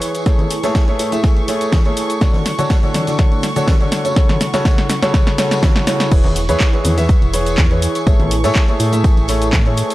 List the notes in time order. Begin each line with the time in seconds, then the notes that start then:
Already playing: E3 E4 G#4 B4 C#5 G#5 C#6
0.01 closed hi-hat, open hi-hat, shaker
0.15 closed hi-hat, tambourine, shaker
0.26 A3 E4 G#4 A4 C#5, kick, snare, closed hi-hat, shaker
0.39 closed hi-hat, tambourine, high conga
0.51 closed hi-hat, open hi-hat, shaker
0.63 A2 A3 E4 G#4 A4 C#5, snare, closed hi-hat, tambourine, shaker
0.75 kick, snare, closed hi-hat, tambourine, shaker
0.88 A3 E4 G#4 A4 C#5, closed hi-hat, tambourine
0.95 A3
0.99 A2, closed hi-hat, open hi-hat, shaker
1.12 A3 E4 G#4 A4 E5, closed hi-hat, tambourine, shaker
1.24 kick, snare, closed hi-hat, tambourine, shaker
1.36 A1, closed hi-hat, tambourine
1.48 A3 E4 G#4 A4 C#5, snare, closed hi-hat, open hi-hat, shaker
1.61 closed hi-hat, tambourine, shaker
1.72 A2, kick, snare, closed hi-hat, tambourine, high conga, shaker
1.85 A3 E4 G#4 A4 C#5, closed hi-hat, tambourine
1.97 closed hi-hat, open hi-hat, shaker
2.10 closed hi-hat, tambourine, shaker
2.21 D2 D3 D4 F#4 A4 C#5, kick, snare, closed hi-hat, tambourine, shaker
2.34 snare, closed hi-hat, tambourine, high conga
2.46 snare, closed hi-hat, open hi-hat, shaker
2.58 D3 D4 F#4 A4 C#5, closed hi-hat, tambourine, shaker
2.70 F#5, kick, snare, closed hi-hat, tambourine, shaker
2.83 D3 D4 F#4 A4 C#5, closed hi-hat, tambourine
2.94 D1, snare, closed hi-hat, open hi-hat, high conga, shaker
3.07 D3 D4 F#4 A4 D5, snare, closed hi-hat, tambourine, shaker
3.18 D4 F#4 A4 C#5, kick, snare, closed hi-hat, tambourine, shaker
3.32 D2, closed hi-hat, tambourine
3.43 snare, open hi-hat, shaker
3.56 D3 D4 F#4 A4 C#5, closed hi-hat, tambourine, shaker
3.68 F#2, kick, snare, closed hi-hat, tambourine, high conga, shaker
3.80 D3 D4 F#4 A4 C#5, closed hi-hat, tambourine
3.92 E4, snare, closed hi-hat, open hi-hat, shaker
4.05 C#3 C#4 F#4 A4 C#5, closed hi-hat, tambourine, shaker
4.16 kick, snare, closed hi-hat, tambourine, shaker
4.29 snare, closed hi-hat, tambourine, high conga
4.41 snare, closed hi-hat, open hi-hat, shaker
4.53 F#2 C#3 C#4 F#4 A4 C#5, snare, closed hi-hat, tambourine, shaker
4.65 F#4, kick, snare, closed hi-hat, tambourine, shaker
4.78 snare, closed hi-hat, tambourine
4.89 F#2 C#6, snare, closed hi-hat, open hi-hat, shaker
5.02 C#3 C#4 F#4 A4 C#5, snare, closed hi-hat, tambourine, shaker
5.14 kick, snare, closed hi-hat, tambourine, shaker
5.27 F#1, snare, closed hi-hat, tambourine
5.38 C#3 C#4 F#4 A4 C#5, snare, closed hi-hat, open hi-hat, shaker
5.51 snare, closed hi-hat, tambourine, shaker
5.62 F#2 C#3 C#4 F#4 A4 C#5, kick, snare, closed hi-hat, tambourine, high conga, shaker
5.76 snare, closed hi-hat, tambourine
5.87 C#3 C#4 F#4 A4 C#5, snare, closed hi-hat, open hi-hat, shaker
6.00 snare, closed hi-hat, tambourine, shaker
6.12 E1 E3 E4 G#4 B4 C#5 C#6, kick, closed hi-hat, crash, shaker
6.24 snare, closed hi-hat, tambourine, high conga
6.36 closed hi-hat, open hi-hat, shaker
6.48 E2 E3 E4 G#4 B4 C#5, closed hi-hat, tambourine, shaker
6.60 kick, snare, clap, closed hi-hat, shaker
6.73 E3 E4 G#4 B4 C#5, closed hi-hat, tambourine
6.81 E2 G#5, snare, closed hi-hat, open hi-hat, high conga, shaker
6.98 E3 E4 G#4 B4 E5, snare, closed hi-hat, tambourine, shaker
7.08 kick, closed hi-hat, tambourine, shaker
7.22 E1, closed hi-hat, tambourine
7.33 E3 E4 G#4 B4 C#5, open hi-hat, shaker
7.46 closed hi-hat, tambourine, shaker
7.58 E2, kick, snare, clap, closed hi-hat, tambourine, high conga, shaker
7.71 E3 E4 G#4 B4 C#5, closed hi-hat, tambourine
7.82 closed hi-hat, open hi-hat, shaker
7.95 closed hi-hat, tambourine, shaker
8.07 A1 A3 E4 G#4 A4 C#5, kick, closed hi-hat, tambourine, shaker
8.20 closed hi-hat, tambourine, high conga
8.31 closed hi-hat, open hi-hat, shaker
8.40 A2 A3 E4 G#4 A4 C#5, closed hi-hat
8.44 snare, tambourine, shaker
8.55 kick, snare, clap, closed hi-hat, shaker
8.68 A3 E4 G#4 A4 C#5, closed hi-hat, tambourine
8.80 A2, closed hi-hat, open hi-hat, shaker
8.92 A3 E4 G#4 A4 E5, closed hi-hat, tambourine, shaker
9.04 kick, closed hi-hat, tambourine, shaker
9.17 A1, closed hi-hat, tambourine
9.28 A3 E4 G#4 A4 C#5, snare, closed hi-hat, open hi-hat, shaker
9.42 closed hi-hat, tambourine, shaker
9.53 A2, kick, snare, clap, closed hi-hat, tambourine, high conga, shaker
9.66 A3 E4 G#4 A4 C#5, closed hi-hat, tambourine
9.77 closed hi-hat, open hi-hat, shaker
9.90 closed hi-hat, tambourine, shaker